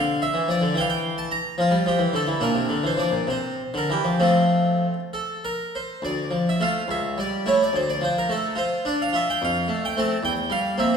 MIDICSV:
0, 0, Header, 1, 2, 480
1, 0, Start_track
1, 0, Key_signature, -1, "major"
1, 0, Tempo, 544465
1, 654, Time_signature, 6, 3, 24, 8
1, 1134, Tempo, 567108
1, 2574, Tempo, 608519
1, 4974, Tempo, 564440
1, 4975, Key_signature, -1, "minor"
1, 7374, Tempo, 545455
1, 9237, End_track
2, 0, Start_track
2, 0, Title_t, "Harpsichord"
2, 0, Program_c, 0, 6
2, 0, Note_on_c, 0, 50, 67
2, 0, Note_on_c, 0, 77, 98
2, 186, Note_off_c, 0, 77, 0
2, 194, Note_on_c, 0, 76, 93
2, 199, Note_off_c, 0, 50, 0
2, 298, Note_on_c, 0, 52, 60
2, 410, Note_off_c, 0, 52, 0
2, 424, Note_off_c, 0, 76, 0
2, 426, Note_on_c, 0, 53, 62
2, 445, Note_on_c, 0, 74, 95
2, 534, Note_off_c, 0, 53, 0
2, 542, Note_on_c, 0, 50, 60
2, 636, Note_off_c, 0, 74, 0
2, 652, Note_off_c, 0, 50, 0
2, 655, Note_on_c, 0, 52, 66
2, 680, Note_on_c, 0, 79, 98
2, 709, Note_on_c, 0, 77, 80
2, 726, Note_off_c, 0, 79, 0
2, 771, Note_off_c, 0, 77, 0
2, 788, Note_on_c, 0, 79, 93
2, 1021, Note_off_c, 0, 79, 0
2, 1040, Note_on_c, 0, 81, 94
2, 1148, Note_off_c, 0, 81, 0
2, 1158, Note_on_c, 0, 82, 105
2, 1177, Note_off_c, 0, 52, 0
2, 1349, Note_off_c, 0, 82, 0
2, 1383, Note_on_c, 0, 53, 68
2, 1404, Note_on_c, 0, 65, 85
2, 1491, Note_off_c, 0, 53, 0
2, 1493, Note_on_c, 0, 55, 66
2, 1594, Note_off_c, 0, 65, 0
2, 1607, Note_off_c, 0, 55, 0
2, 1622, Note_on_c, 0, 53, 61
2, 1639, Note_on_c, 0, 67, 85
2, 1727, Note_on_c, 0, 52, 60
2, 1731, Note_off_c, 0, 53, 0
2, 1832, Note_off_c, 0, 67, 0
2, 1844, Note_off_c, 0, 52, 0
2, 1851, Note_on_c, 0, 50, 60
2, 1870, Note_on_c, 0, 69, 94
2, 1966, Note_off_c, 0, 50, 0
2, 1967, Note_on_c, 0, 52, 61
2, 2080, Note_on_c, 0, 46, 62
2, 2082, Note_on_c, 0, 62, 40
2, 2084, Note_off_c, 0, 52, 0
2, 2100, Note_on_c, 0, 70, 81
2, 2102, Note_off_c, 0, 69, 0
2, 2198, Note_on_c, 0, 48, 57
2, 2200, Note_off_c, 0, 46, 0
2, 2320, Note_off_c, 0, 48, 0
2, 2324, Note_on_c, 0, 50, 54
2, 2443, Note_off_c, 0, 50, 0
2, 2445, Note_on_c, 0, 52, 59
2, 2458, Note_off_c, 0, 70, 0
2, 2470, Note_on_c, 0, 72, 79
2, 2562, Note_on_c, 0, 53, 60
2, 2564, Note_off_c, 0, 52, 0
2, 2580, Note_on_c, 0, 74, 80
2, 2583, Note_off_c, 0, 72, 0
2, 2676, Note_on_c, 0, 46, 48
2, 2677, Note_off_c, 0, 53, 0
2, 2768, Note_off_c, 0, 62, 0
2, 2774, Note_off_c, 0, 74, 0
2, 2792, Note_off_c, 0, 46, 0
2, 2799, Note_on_c, 0, 48, 54
2, 2821, Note_on_c, 0, 72, 79
2, 3059, Note_off_c, 0, 48, 0
2, 3168, Note_on_c, 0, 50, 50
2, 3171, Note_off_c, 0, 72, 0
2, 3195, Note_on_c, 0, 70, 65
2, 3282, Note_off_c, 0, 50, 0
2, 3290, Note_on_c, 0, 52, 53
2, 3302, Note_off_c, 0, 70, 0
2, 3307, Note_on_c, 0, 67, 70
2, 3405, Note_off_c, 0, 52, 0
2, 3407, Note_on_c, 0, 53, 50
2, 3508, Note_off_c, 0, 67, 0
2, 3519, Note_off_c, 0, 53, 0
2, 3528, Note_on_c, 0, 53, 43
2, 3528, Note_on_c, 0, 60, 34
2, 3531, Note_on_c, 0, 57, 35
2, 3547, Note_on_c, 0, 65, 64
2, 4037, Note_off_c, 0, 53, 0
2, 4110, Note_off_c, 0, 60, 0
2, 4112, Note_off_c, 0, 57, 0
2, 4158, Note_off_c, 0, 65, 0
2, 4267, Note_on_c, 0, 69, 63
2, 4505, Note_off_c, 0, 69, 0
2, 4513, Note_on_c, 0, 70, 66
2, 4748, Note_off_c, 0, 70, 0
2, 4756, Note_on_c, 0, 72, 69
2, 4969, Note_on_c, 0, 38, 51
2, 4982, Note_off_c, 0, 72, 0
2, 4987, Note_on_c, 0, 74, 81
2, 5206, Note_off_c, 0, 38, 0
2, 5209, Note_on_c, 0, 53, 42
2, 5343, Note_off_c, 0, 74, 0
2, 5366, Note_on_c, 0, 76, 78
2, 5459, Note_on_c, 0, 57, 41
2, 5465, Note_on_c, 0, 65, 48
2, 5466, Note_off_c, 0, 53, 0
2, 5472, Note_off_c, 0, 76, 0
2, 5478, Note_on_c, 0, 77, 83
2, 5633, Note_off_c, 0, 57, 0
2, 5636, Note_off_c, 0, 65, 0
2, 5674, Note_off_c, 0, 77, 0
2, 5698, Note_on_c, 0, 37, 59
2, 5718, Note_on_c, 0, 76, 82
2, 5932, Note_off_c, 0, 37, 0
2, 5950, Note_off_c, 0, 76, 0
2, 5950, Note_on_c, 0, 55, 45
2, 5968, Note_on_c, 0, 74, 82
2, 6189, Note_on_c, 0, 57, 45
2, 6192, Note_on_c, 0, 64, 47
2, 6194, Note_off_c, 0, 74, 0
2, 6197, Note_off_c, 0, 55, 0
2, 6207, Note_on_c, 0, 73, 85
2, 6313, Note_off_c, 0, 73, 0
2, 6332, Note_on_c, 0, 74, 85
2, 6357, Note_off_c, 0, 57, 0
2, 6359, Note_off_c, 0, 64, 0
2, 6422, Note_on_c, 0, 38, 54
2, 6435, Note_off_c, 0, 74, 0
2, 6443, Note_on_c, 0, 72, 85
2, 6549, Note_off_c, 0, 72, 0
2, 6560, Note_on_c, 0, 74, 78
2, 6651, Note_off_c, 0, 38, 0
2, 6660, Note_on_c, 0, 53, 45
2, 6667, Note_off_c, 0, 74, 0
2, 6685, Note_on_c, 0, 72, 83
2, 6789, Note_off_c, 0, 72, 0
2, 6805, Note_on_c, 0, 70, 81
2, 6896, Note_on_c, 0, 57, 47
2, 6908, Note_off_c, 0, 53, 0
2, 6909, Note_off_c, 0, 70, 0
2, 6916, Note_on_c, 0, 69, 80
2, 7110, Note_off_c, 0, 69, 0
2, 7121, Note_on_c, 0, 65, 52
2, 7143, Note_on_c, 0, 72, 93
2, 7146, Note_off_c, 0, 57, 0
2, 7374, Note_on_c, 0, 62, 54
2, 7379, Note_off_c, 0, 72, 0
2, 7380, Note_off_c, 0, 65, 0
2, 7392, Note_on_c, 0, 74, 76
2, 7507, Note_off_c, 0, 74, 0
2, 7521, Note_on_c, 0, 77, 87
2, 7617, Note_on_c, 0, 65, 55
2, 7632, Note_off_c, 0, 77, 0
2, 7633, Note_off_c, 0, 62, 0
2, 7637, Note_on_c, 0, 76, 100
2, 7750, Note_off_c, 0, 76, 0
2, 7767, Note_on_c, 0, 79, 90
2, 7860, Note_off_c, 0, 65, 0
2, 7872, Note_on_c, 0, 41, 65
2, 7874, Note_off_c, 0, 79, 0
2, 7895, Note_on_c, 0, 77, 96
2, 8099, Note_off_c, 0, 41, 0
2, 8104, Note_on_c, 0, 57, 51
2, 8238, Note_off_c, 0, 77, 0
2, 8253, Note_on_c, 0, 79, 97
2, 8346, Note_off_c, 0, 57, 0
2, 8357, Note_off_c, 0, 79, 0
2, 8357, Note_on_c, 0, 57, 50
2, 8362, Note_on_c, 0, 60, 54
2, 8377, Note_on_c, 0, 81, 101
2, 8524, Note_off_c, 0, 57, 0
2, 8528, Note_off_c, 0, 60, 0
2, 8566, Note_off_c, 0, 81, 0
2, 8583, Note_on_c, 0, 40, 66
2, 8602, Note_on_c, 0, 79, 102
2, 8813, Note_off_c, 0, 40, 0
2, 8823, Note_on_c, 0, 55, 57
2, 8830, Note_off_c, 0, 79, 0
2, 8841, Note_on_c, 0, 77, 103
2, 9033, Note_off_c, 0, 77, 0
2, 9067, Note_on_c, 0, 58, 52
2, 9069, Note_off_c, 0, 55, 0
2, 9071, Note_on_c, 0, 60, 55
2, 9086, Note_on_c, 0, 76, 107
2, 9189, Note_off_c, 0, 76, 0
2, 9234, Note_off_c, 0, 58, 0
2, 9236, Note_off_c, 0, 60, 0
2, 9237, End_track
0, 0, End_of_file